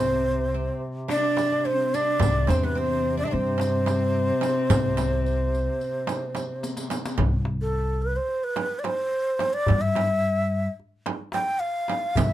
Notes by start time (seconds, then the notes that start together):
Already playing: C2 C3 C4 C5
0.00 riq
0.54 C4, darbuka ka
1.08 D4 D5, riq, darbuka tek
1.37 riq, darbuka tek, frame drum
1.52 D4
1.65 C4 C5
1.94 D4 D5, riq
2.20 C2 C3, riq, frame drum, darbuka dum
2.47 E2 C4 C5, riq, darbuka tek, frame drum
2.52 C4
2.63 B3 B4
2.75 C4 C5
2.80 C4
3.17 D4 D5
3.24 D4 E5
3.28 C4 D5
3.33 G2 C4 C5
3.58 riq, darbuka tek, frame drum
3.86 riq, darbuka tek, frame drum
4.41 riq, darbuka tek, frame drum
4.70 C2, riq, darbuka dum, frame drum
4.97 riq, darbuka tek, frame drum
5.26 riq, darbuka ka
5.53 riq, darbuka ka
5.81 riq, darbuka ka
6.07 riq, darbuka tek, frame drum
6.35 riq, darbuka tek, frame drum
6.63 riq, darbuka tek
6.77 riq, darbuka ka
6.90 riq, darbuka tek, frame drum
7.05 riq, darbuka ka
7.18 C2, frame drum, darbuka dum
7.45 darbuka tek
7.62 A4
7.74 darbuka ka
8.02 B4
8.16 C5
8.28 darbuka ka
8.44 B4
8.56 darbuka tek, frame drum
8.79 D5
8.84 C5, darbuka tek, frame drum
9.12 darbuka ka
9.39 darbuka tek, frame drum
9.53 D5
9.67 G2, darbuka dum, frame drum
9.81 E5
9.95 darbuka tek, frame drum
10.24 darbuka ka
10.79 darbuka ka
11.06 darbuka tek, frame drum
11.32 G5, darbuka tek, frame drum
11.60 F5, darbuka ka
11.88 darbuka tek, frame drum
12.15 C2 E5, riq, darbuka dum, frame drum